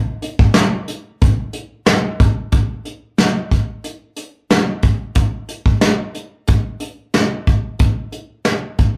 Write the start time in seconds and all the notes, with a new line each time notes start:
0.22 closed hi-hat
0.39 kick
0.54 snare, clap, closed hi-hat
0.88 closed hi-hat
1.22 kick, closed hi-hat
1.53 closed hi-hat
1.86 snare, clap, closed hi-hat
2.20 kick, closed hi-hat
2.52 kick, closed hi-hat
2.85 closed hi-hat
3.18 snare, closed hi-hat
3.51 kick, closed hi-hat
3.84 closed hi-hat
4.16 closed hi-hat
4.50 snare, closed hi-hat
4.82 kick, closed hi-hat
5.15 kick, closed hi-hat
5.49 closed hi-hat
5.66 kick
5.81 snare, closed hi-hat
6.15 closed hi-hat
6.48 kick, closed hi-hat
6.80 closed hi-hat
7.14 snare, closed hi-hat
7.47 kick, closed hi-hat
7.79 kick, closed hi-hat
8.12 closed hi-hat
8.45 snare, closed hi-hat
8.79 kick, closed hi-hat